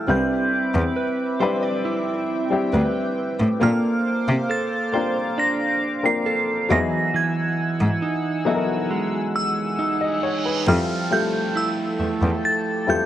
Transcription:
Already playing: grand piano G3 E4 G#4 A4, clean electric guitar E4 G4, synth bell F6
0.07 cello C2, grand piano G3 C4 D4 E4 B4, clean electric guitar C4, analog synth pad C4 E5 B5 D6, synth bell G6
0.75 cello E2
0.96 clean electric guitar B4
1.40 grand piano G3 C4 D4 E4 B4, clean electric guitar C5
1.63 clean electric guitar D5
1.85 clean electric guitar E4, analog synth pad G5
2.50 grand piano G3 C4 D4 E4 G4
2.73 cello D2, clean electric guitar B4
3.40 cello A2
3.60 cello A#2, grand piano A#3 C4 D4 F4 A4, clean electric guitar A#3, analog synth pad C5 F5 D6, synth bell F6
4.28 cello C3
4.50 clean electric guitar A4, synth bell A6
4.92 grand piano A#3 C4 D4 F4 A#4, clean electric guitar C5
5.38 clean electric guitar D4, synth bell A#6
6.03 grand piano A#3 C4 D4 F4 A#4, synth bell C7
6.26 clean electric guitar A4
6.69 cello E2, clean electric guitar E3, grand piano F#3 B3 D#4 E4 G#4, analog synth pad F#5 G#5 E6, synth bell A#6
7.14 clean electric guitar E3, synth bell G#6
7.81 cello G#2
8.02 clean electric guitar D#4
8.45 grand piano F#3 B3 D#4 E4 A4, clean electric guitar F#4
8.55 grand piano A#4
8.91 clean electric guitar G#3, reverse cymbal
9.36 synth bell E6
9.79 clean electric guitar D#4
10.01 grand piano D#5
10.23 grand piano C#5
10.46 grand piano B4
10.66 cello F2, clean electric guitar F3, grand piano G3 C4 E4 F4 A4, analog synth pad A4 G5 A5, synth bell F6, downlifter
11.10 grand piano G3 C4 E4 F4 A4, clean electric guitar A3, synth bell G6
11.56 clean electric guitar E4, synth bell E6
12.00 cello E2, clean electric guitar A3
12.22 cello E2
12.44 analog synth pad D6, synth bell A6
12.86 cello E2, grand piano G3 C4 E4 F4 A4, synth bell G6

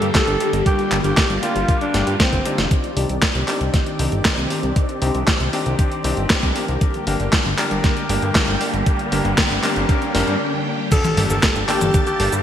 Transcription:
Already playing: string machine D3 G3 A#3 G4, electric grand piano G3 A#3 D4 G4
0.02 analog synth bass G2, closed hi-hat
0.15 alto saxophone A4, kick, snare, clap, closed hi-hat
0.27 analog synth bass G1, closed hi-hat
0.40 electric grand piano G3 A#3 D4 G4, closed hi-hat
0.53 analog synth bass G1, closed hi-hat
0.66 string machine F4, alto saxophone G4, kick, closed hi-hat
0.79 closed hi-hat
0.92 analog synth bass G1, electric grand piano G3 A#3 D4 G4, clap, closed hi-hat
1.04 analog synth bass G1, alto saxophone G4, closed hi-hat
1.17 kick, snare, clap, closed hi-hat
1.30 analog synth bass G1, closed hi-hat
1.43 electric grand piano G3 A#3 D4 G4, alto saxophone F4, closed hi-hat
1.56 analog synth bass G1, closed hi-hat
1.68 kick, closed hi-hat
1.81 alto saxophone D4, closed hi-hat
1.94 analog synth bass G1, electric grand piano G3 A#3 D4 G4, snare, closed hi-hat
2.07 analog synth bass G2, closed hi-hat
2.20 alto saxophone C4, kick, snare, closed hi-hat
2.33 analog synth bass G1, kick, closed hi-hat
2.45 electric grand piano C4 D4 D#4 G4, closed hi-hat
2.58 analog synth bass F1, snare, closed hi-hat
2.71 string machine D#3 C4 G4 D5, kick, closed hi-hat, riser
2.84 closed hi-hat
2.97 analog synth bass C2, electric grand piano C4 D4 D#4 G4, open hi-hat
3.09 analog synth bass C2, closed hi-hat
3.22 kick, snare, clap, closed hi-hat
3.35 analog synth bass C2, closed hi-hat
3.48 electric grand piano C4 D4 D#4 G4, clap, open hi-hat
3.61 analog synth bass C2, closed hi-hat
3.74 kick, snare, closed hi-hat
3.86 closed hi-hat
3.99 analog synth bass C2, electric grand piano C4 D4 D#4 G4, open hi-hat
4.12 analog synth bass G1, closed hi-hat
4.25 kick, snare, clap, closed hi-hat
4.38 analog synth bass C2, closed hi-hat
4.50 electric grand piano C4 D4 D#4 G4, open hi-hat
4.63 analog synth bass C2, closed hi-hat
4.76 kick, closed hi-hat
4.89 closed hi-hat
5.02 analog synth bass C2, electric grand piano C4 D4 D#4 G4, open hi-hat
5.15 analog synth bass C2, closed hi-hat
5.27 kick, snare, clap, closed hi-hat
5.40 analog synth bass C2, closed hi-hat
5.53 electric grand piano C4 D4 D#4 G4, open hi-hat
5.66 analog synth bass C2, closed hi-hat
5.79 kick, closed hi-hat
5.91 closed hi-hat
6.04 analog synth bass C2, electric grand piano C4 D4 D#4 G4, open hi-hat
6.17 analog synth bass G1, closed hi-hat
6.30 kick, snare, clap, closed hi-hat
6.43 analog synth bass C2, kick, closed hi-hat
6.56 electric grand piano A#3 D4 G4 A#4, open hi-hat
6.68 analog synth bass C2, closed hi-hat
6.81 string machine D3 G3 A#3, kick, closed hi-hat
6.94 closed hi-hat
7.07 analog synth bass G1, electric grand piano A#3 D4 G4 A#4, open hi-hat
7.20 analog synth bass G1, closed hi-hat
7.33 kick, snare, clap, closed hi-hat
7.45 analog synth bass G1, closed hi-hat
7.58 electric grand piano A#3 D4 G4 A#4, clap, open hi-hat
7.71 analog synth bass G1, closed hi-hat
7.84 kick, snare, closed hi-hat
7.97 closed hi-hat
8.09 analog synth bass G1, electric grand piano A#3 D4 G4 A#4, open hi-hat
8.22 analog synth bass G2, closed hi-hat
8.35 kick, snare, clap, closed hi-hat
8.48 analog synth bass G1, closed hi-hat
8.61 electric grand piano A#3 D4 G4 A#4, open hi-hat
8.74 analog synth bass G1, closed hi-hat
8.86 kick, closed hi-hat
8.99 closed hi-hat
9.12 analog synth bass G1, electric grand piano A#3 D4 G4 A#4, open hi-hat
9.25 analog synth bass G1, closed hi-hat
9.38 kick, snare, clap, closed hi-hat
9.51 analog synth bass G1, closed hi-hat
9.63 electric grand piano A#3 D4 G4 A#4, clap, open hi-hat
9.76 analog synth bass G1, closed hi-hat
9.89 kick, closed hi-hat
10.02 closed hi-hat
10.15 analog synth bass F1, electric grand piano A#3 D4 G4 A#4, snare, open hi-hat
10.27 analog synth bass G2, closed hi-hat
10.92 string machine D3 A#3 G4 A5, alto saxophone A4, kick, closed hi-hat, crash, impact, cabasa
11.04 closed hi-hat, high tom, cabasa
11.17 analog synth bass G1, electric grand piano A#3 D4 G4 A4, open hi-hat
11.30 analog synth bass G1, alto saxophone A4, closed hi-hat, cabasa
11.43 kick, snare, clap, closed hi-hat, cabasa
11.56 analog synth bass G1, closed hi-hat, cabasa
11.69 electric grand piano A#3 D4 G4 A4, alto saxophone G4, clap, open hi-hat
11.81 analog synth bass G1, closed hi-hat, high tom, cabasa
11.94 kick, closed hi-hat, cabasa
12.07 alto saxophone G4, closed hi-hat, cabasa
12.20 analog synth bass G1, electric grand piano A#3 D4 G4 A4, open hi-hat
12.33 analog synth bass G2, closed hi-hat, cabasa

